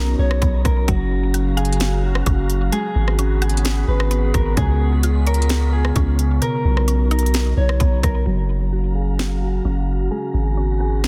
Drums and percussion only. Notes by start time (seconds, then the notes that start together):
0.31 cross-stick
0.42 kick, closed hi-hat
0.65 kick, cross-stick, closed hi-hat
0.88 kick, closed hi-hat
1.34 closed hi-hat
1.57 closed hi-hat
1.65 closed hi-hat
1.73 closed hi-hat
1.80 snare, closed hi-hat
2.15 cross-stick
2.26 kick, closed hi-hat
2.50 closed hi-hat
2.72 closed hi-hat
3.08 cross-stick
3.19 closed hi-hat
3.42 closed hi-hat
3.49 closed hi-hat
3.57 closed hi-hat
3.65 snare, closed hi-hat
4.00 cross-stick
4.11 closed hi-hat
4.34 kick, cross-stick, closed hi-hat
4.57 kick, closed hi-hat
5.03 closed hi-hat
5.26 closed hi-hat
5.34 closed hi-hat
5.42 closed hi-hat
5.49 snare, closed hi-hat
5.85 cross-stick
5.96 kick, closed hi-hat
6.19 closed hi-hat
6.42 closed hi-hat
6.77 cross-stick
6.88 closed hi-hat
7.11 closed hi-hat
7.19 closed hi-hat
7.26 closed hi-hat
7.34 snare, closed hi-hat
7.69 cross-stick
7.80 kick, closed hi-hat
8.03 kick, cross-stick, closed hi-hat
9.19 snare
11.04 snare